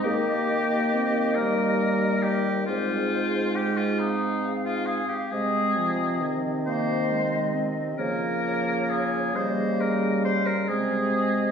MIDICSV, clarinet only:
0, 0, Header, 1, 2, 480
1, 0, Start_track
1, 0, Key_signature, -4, "major"
1, 0, Tempo, 882353
1, 20, Time_signature, 6, 3, 24, 8
1, 3859, Tempo, 896861
1, 6225, End_track
2, 0, Start_track
2, 0, Title_t, "Clarinet"
2, 0, Program_c, 0, 71
2, 21, Note_on_c, 0, 58, 76
2, 1361, Note_off_c, 0, 58, 0
2, 1454, Note_on_c, 0, 60, 65
2, 2013, Note_off_c, 0, 60, 0
2, 2175, Note_on_c, 0, 60, 78
2, 2879, Note_off_c, 0, 60, 0
2, 2903, Note_on_c, 0, 60, 62
2, 3609, Note_off_c, 0, 60, 0
2, 3629, Note_on_c, 0, 58, 81
2, 3869, Note_on_c, 0, 56, 67
2, 3877, Note_off_c, 0, 58, 0
2, 4100, Note_on_c, 0, 60, 74
2, 4108, Note_off_c, 0, 56, 0
2, 4335, Note_off_c, 0, 60, 0
2, 4338, Note_on_c, 0, 58, 69
2, 5050, Note_off_c, 0, 58, 0
2, 5069, Note_on_c, 0, 58, 69
2, 5629, Note_off_c, 0, 58, 0
2, 5785, Note_on_c, 0, 60, 73
2, 6225, Note_off_c, 0, 60, 0
2, 6225, End_track
0, 0, End_of_file